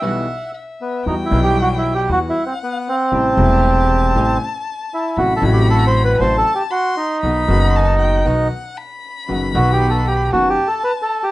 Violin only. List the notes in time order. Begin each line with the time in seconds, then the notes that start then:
0.02 F#5
0.54 E5
1.06 G5
2.08 F#5
3.12 A5
5.17 B5
6.20 A5
6.71 C6
7.22 B5
7.76 A5
7.99 G5
8.26 F#5
8.78 B5
10.33 A5